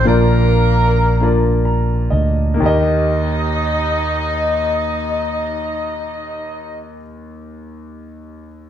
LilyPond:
<<
  \new Staff \with { instrumentName = "Grand piano" } { \time 6/8 \key ees \major \tempo 4. = 39 << { bes,4. r8 bes''8 ees''8 | ees,2.~ | ees,2. | } \\ { <bes d' f' bes' d''>4 r8 <bes d' f' bes' d''>4 r8 | <bes ees' g' bes' ees''>2.~ | <bes ees' g' bes' ees''>2. | } >> }
  \new Staff \with { instrumentName = "Horn section" } { \time 6/8 \key ees \major <bes d' f' bes'>2 r4 | <ees' ees''>2.~ | <ees' ees''>2. | }
  \new Staff \with { instrumentName = "Fingered electric bass" } { \clef bass \time 6/8 \key ees \major bes,,2~ bes,,8 d,8 | ees,2.~ | ees,2. | }
>>